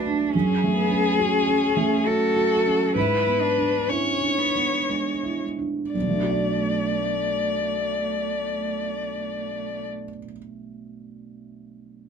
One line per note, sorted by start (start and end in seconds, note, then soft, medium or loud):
0.00 0.30 B1 soft
0.00 0.37 A3 soft
0.00 0.07 D4 soft
0.00 0.34 D4 soft
0.00 0.36 F#4 soft
0.07 0.34 D4 soft
0.32 2.92 F#2 soft
0.32 0.75 C#4 soft
0.32 2.08 G#4 medium
0.64 1.08 A3 soft
0.75 1.19 B3 soft
0.90 1.36 C#4 soft
1.18 2.07 C#4 medium
1.18 1.65 F#4 soft
1.48 1.94 C#4 soft
1.77 2.24 A3 soft
2.06 2.54 C#4 soft
2.06 2.95 F#4 medium
2.06 2.96 A4 medium
2.36 2.84 F#4 soft
2.66 2.96 C#4 soft
2.95 5.90 G#2 soft
2.95 3.42 E4 soft
2.95 3.91 B4 medium
3.26 3.76 B3 soft
3.41 3.90 D4 soft
3.58 4.09 D4 soft
3.89 4.40 C#4 soft
3.89 4.42 E4 soft
3.89 5.41 C#5 medium
4.21 4.74 D4 soft
4.39 4.90 B3 soft
4.55 5.09 B3 soft
4.89 5.41 G#3 soft
4.89 5.45 D4 soft
5.23 5.80 E4 soft
5.59 5.94 D4 soft
5.92 10.02 B1 soft
5.92 9.87 A3 soft
5.92 9.86 D5 soft
6.02 10.09 B2 soft
6.09 10.17 A3 soft
6.16 10.24 D4 soft
6.23 10.31 F#4 soft
6.30 10.37 D5 soft